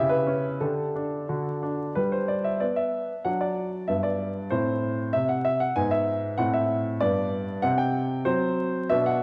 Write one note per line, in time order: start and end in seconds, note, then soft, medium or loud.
0.00 0.59 C#3 medium
0.00 0.57 E4 soft
0.00 0.57 G4 soft
0.09 0.61 B4 medium
0.27 0.60 C#4 soft
0.60 1.27 D3 soft
0.60 0.94 D4 soft
0.60 1.25 G4 soft
0.60 1.63 A4 soft
0.96 1.27 D4 soft
1.29 1.95 D3 soft
1.29 1.61 D4 soft
1.29 1.92 F#4 soft
1.63 1.95 D4 soft
1.95 2.48 G3 soft
1.95 3.21 D4 soft
1.95 2.12 B4 medium
2.12 2.29 C5 medium
2.28 2.45 D5 medium
2.44 2.61 E5 medium
2.60 3.12 B3 soft
2.60 2.77 D5 medium
2.76 3.25 E5 medium
3.25 3.76 F#3 soft
3.25 3.84 D4 soft
3.25 3.41 F#5 medium
3.41 3.88 D5 medium
3.88 4.38 G2 soft
3.88 4.47 B3 soft
3.88 4.03 E5 medium
4.03 4.51 D5 medium
4.50 5.01 A2 medium
4.50 5.72 C4 soft
4.50 5.13 C5 medium
5.13 5.64 C3 soft
5.13 5.29 E5 medium
5.29 5.44 F#5 medium
5.45 5.60 E5 medium
5.60 5.76 F#5 medium
5.76 6.26 G#2 medium
5.76 6.35 B3 soft
5.76 5.92 G#5 medium
5.91 6.38 E5 medium
6.38 6.88 A2 medium
6.38 6.97 C4 soft
6.38 6.54 F#5 medium
6.54 7.01 E5 medium
7.01 7.51 G2 medium
7.01 7.59 B3 soft
7.01 7.63 D5 medium
7.62 8.13 C3 medium
7.62 8.22 C4 soft
7.62 7.78 F#5 medium
7.78 8.25 G5 medium
8.25 8.77 F#3 medium
8.25 8.86 C4 soft
8.25 8.90 C5 medium
8.90 9.23 B2 medium
8.90 9.23 D4 soft
8.90 9.06 E5 medium
9.06 9.23 F#5 medium